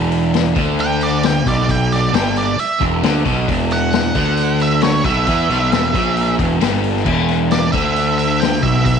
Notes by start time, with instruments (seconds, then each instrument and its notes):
Already playing: picked electric bass E1, overdriven electric guitar E2
0.12 open hi-hat
0.34 snare, open hi-hat
0.55 picked electric bass D2, overdriven electric guitar D3, kick, open hi-hat
0.79 lead electric guitar G5, open hi-hat
1.01 lead electric guitar D5, open hi-hat
1.23 lead electric guitar G5, snare, open hi-hat
1.44 picked electric bass B1, overdriven electric guitar B2, lead electric guitar D5, kick, open hi-hat
1.60 snare
1.69 lead electric guitar G5, kick, open hi-hat
1.92 lead electric guitar D5, snare, open hi-hat
2.12 picked electric bass G1, overdriven electric guitar G2, lead electric guitar G5, snare, open hi-hat
2.36 lead electric guitar D5, open hi-hat
2.58 lead electric guitar E5, muted overdriven electric guitar stroke, muted picked electric bass stroke, open hi-hat
2.80 picked electric bass E1, overdriven electric guitar E2, kick, open hi-hat
3.03 picked electric bass D2, overdriven electric guitar D3, snare, open hi-hat
3.25 picked electric bass B1, overdriven electric guitar B2, kick, open hi-hat
3.48 picked electric bass E1, overdriven electric guitar E2, kick, open hi-hat
3.71 lead electric guitar F#5, snare, open hi-hat
3.93 snare, open hi-hat
4.15 picked electric bass D2, overdriven electric guitar D3, kick, open hi-hat
4.37 open hi-hat
4.60 lead electric guitar E5, open hi-hat
4.82 lead electric guitar C#5, snare, open hi-hat
5.04 picked electric bass B1, overdriven electric guitar B2, lead electric guitar E5, kick, open hi-hat
5.27 picked electric bass E2, overdriven electric guitar E3, kick, open hi-hat
5.50 picked electric bass B1, overdriven electric guitar B2, snare, open hi-hat
5.71 picked electric bass E1, overdriven electric guitar E2, snare, open hi-hat
5.93 picked electric bass A#1, overdriven electric guitar A#2, kick, open hi-hat
6.17 open hi-hat
6.39 picked electric bass E1, overdriven electric guitar E2, kick, open hi-hat
6.61 picked electric bass G1, overdriven electric guitar G2, snare, open hi-hat
6.84 open hi-hat
6.96 snare
7.05 picked electric bass E1, overdriven electric guitar E2, kick, crash
7.28 snare, open hi-hat
7.51 lead electric guitar D5, snare, open hi-hat
7.72 picked electric bass D2, overdriven electric guitar D3, lead electric guitar E5, kick, open hi-hat
7.96 open hi-hat
8.18 lead electric guitar E5, open hi-hat
8.40 lead electric guitar G5, snare, open hi-hat
8.62 picked electric bass B1, overdriven electric guitar B2, lead electric guitar E5, kick, open hi-hat
8.76 snare
8.85 lead electric guitar E5, kick, open hi-hat